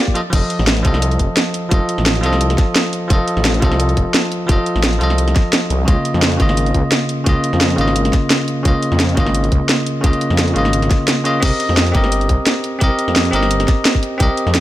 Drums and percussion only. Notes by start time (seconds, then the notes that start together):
0.07 kick
0.15 closed hi-hat
0.33 kick, closed hi-hat, crash
0.50 closed hi-hat
0.59 snare
0.67 snare, closed hi-hat
0.77 closed hi-hat
0.85 kick, snare, closed hi-hat
0.94 snare
1.02 closed hi-hat
1.11 closed hi-hat
1.19 kick, closed hi-hat
1.37 snare, closed hi-hat
1.54 closed hi-hat
1.71 kick, closed hi-hat
1.89 closed hi-hat
1.98 snare
2.06 snare, closed hi-hat
2.15 closed hi-hat
2.23 closed hi-hat
2.33 snare
2.41 closed hi-hat
2.50 snare, closed hi-hat
2.58 kick, snare, closed hi-hat
2.76 snare, closed hi-hat
2.93 closed hi-hat
3.10 kick, closed hi-hat
3.28 closed hi-hat
3.37 snare
3.45 snare, closed hi-hat
3.54 closed hi-hat
3.62 kick, snare, closed hi-hat
3.72 snare
3.80 closed hi-hat
3.89 closed hi-hat
3.97 kick, closed hi-hat
4.14 snare, closed hi-hat
4.32 closed hi-hat
4.49 kick, closed hi-hat
4.66 closed hi-hat
4.76 snare
4.84 snare, closed hi-hat
4.93 closed hi-hat
5.01 closed hi-hat
5.10 snare
5.18 closed hi-hat
5.28 snare, closed hi-hat
5.36 kick, snare, closed hi-hat
5.53 snare, closed hi-hat
5.70 closed hi-hat
5.88 kick, closed hi-hat
6.05 closed hi-hat
6.14 snare
6.22 snare, closed hi-hat
6.32 closed hi-hat
6.40 kick, snare, closed hi-hat
6.49 snare
6.57 closed hi-hat
6.66 closed hi-hat
6.74 kick, closed hi-hat
6.92 snare, closed hi-hat
7.09 closed hi-hat
7.26 kick, closed hi-hat
7.44 closed hi-hat
7.53 snare
7.61 snare, closed hi-hat
7.70 closed hi-hat
7.78 closed hi-hat
7.88 snare
7.96 closed hi-hat
8.05 snare, closed hi-hat
8.13 kick, snare, closed hi-hat
8.30 snare, closed hi-hat
8.48 closed hi-hat
8.65 kick, closed hi-hat
8.83 closed hi-hat
8.92 snare
9.00 snare, closed hi-hat
9.09 closed hi-hat
9.17 kick, snare, closed hi-hat
9.26 snare
9.35 closed hi-hat
9.44 closed hi-hat
9.52 kick, closed hi-hat
9.69 snare, closed hi-hat
9.86 closed hi-hat
10.04 kick, closed hi-hat
10.13 closed hi-hat
10.21 closed hi-hat
10.30 snare
10.38 snare, closed hi-hat
10.48 closed hi-hat
10.56 closed hi-hat
10.65 snare
10.73 closed hi-hat
10.82 snare, closed hi-hat
10.91 kick, snare, closed hi-hat
11.08 snare, closed hi-hat
11.25 closed hi-hat
11.43 kick, closed hi-hat, crash
11.60 closed hi-hat
11.69 snare
11.77 snare, closed hi-hat
11.87 closed hi-hat
11.95 kick, snare, closed hi-hat
12.04 snare
12.12 closed hi-hat
12.21 closed hi-hat
12.29 kick, closed hi-hat
12.47 snare, closed hi-hat
12.64 closed hi-hat
12.81 kick, closed hi-hat
12.99 closed hi-hat
13.08 snare
13.16 snare, closed hi-hat
13.25 closed hi-hat
13.33 closed hi-hat
13.43 snare
13.51 closed hi-hat
13.60 snare, closed hi-hat
13.68 kick, snare, closed hi-hat
13.85 snare, closed hi-hat
13.95 kick
14.03 closed hi-hat
14.20 kick, closed hi-hat
14.37 closed hi-hat
14.47 snare
14.55 snare, closed hi-hat